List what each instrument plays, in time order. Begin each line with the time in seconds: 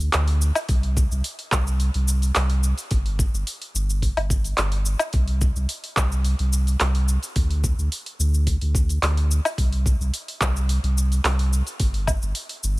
0.00 open hi-hat, shaker
0.13 sub bass D2, clap, open hi-hat, shaker
0.28 open hi-hat
0.42 shaker
0.55 open hi-hat, low woodblock, shaker
0.69 sub bass C2, kick, open hi-hat, shaker
0.83 open hi-hat
0.97 kick, shaker
1.11 sub bass C2, shaker
1.24 open hi-hat, shaker
1.39 open hi-hat
1.52 sub bass C2, kick, clap, shaker
1.67 shaker
1.80 open hi-hat, shaker
1.94 sub bass C2, open hi-hat
2.08 shaker
2.22 open hi-hat, shaker
2.35 sub bass C2, clap, open hi-hat, shaker
2.50 open hi-hat
2.63 shaker
2.78 open hi-hat, shaker
2.91 sub bass G1, kick, open hi-hat, shaker
3.06 open hi-hat
3.19 kick, shaker
3.33 sub bass G1, shaker
3.47 open hi-hat, shaker
3.62 open hi-hat
3.74 sub bass G1, shaker
3.90 shaker
4.02 kick, open hi-hat, shaker
4.17 sub bass G1, open hi-hat, low woodblock
4.30 kick, shaker
4.44 open hi-hat, shaker
4.58 sub bass G1, clap, open hi-hat, shaker
4.72 open hi-hat
4.85 shaker
4.99 open hi-hat, low woodblock, shaker
5.13 sub bass C2, kick, open hi-hat, shaker
5.28 open hi-hat
5.41 kick, shaker
5.56 sub bass C2, shaker
5.69 open hi-hat, shaker
5.84 open hi-hat
5.97 sub bass C2, kick, clap, shaker
6.12 shaker
6.24 open hi-hat, shaker
6.39 sub bass C2, open hi-hat
6.53 shaker
6.67 open hi-hat, shaker
6.80 sub bass C2, clap, open hi-hat, shaker
6.95 open hi-hat
7.08 shaker
7.23 open hi-hat, shaker
7.36 sub bass D2, kick, open hi-hat, shaker
7.51 open hi-hat
7.64 kick, shaker
7.78 sub bass D2, shaker
7.92 open hi-hat, shaker
8.06 open hi-hat
8.19 sub bass D2, shaker
8.34 shaker
8.47 kick, open hi-hat, shaker
8.61 sub bass D2, open hi-hat
8.75 kick, shaker
8.89 open hi-hat, shaker
9.02 sub bass D2, clap, open hi-hat, shaker
9.17 open hi-hat
9.31 shaker
9.45 open hi-hat, low woodblock, shaker
9.58 sub bass C2, kick, open hi-hat, shaker
9.73 open hi-hat
9.86 kick, shaker
10.00 sub bass C2, shaker
10.14 open hi-hat, shaker
10.28 open hi-hat
10.41 sub bass C2, kick, clap, shaker
10.57 shaker
10.69 open hi-hat, shaker
10.83 sub bass C2, open hi-hat
10.98 shaker
11.12 open hi-hat, shaker
11.24 sub bass C2, clap, open hi-hat, shaker
11.39 open hi-hat
11.53 shaker
11.67 open hi-hat, shaker
11.80 sub bass G1, kick, open hi-hat, shaker
11.94 open hi-hat
12.07 kick, low woodblock, shaker
12.22 sub bass G1, shaker
12.35 open hi-hat, shaker
12.49 open hi-hat
12.63 sub bass G1, shaker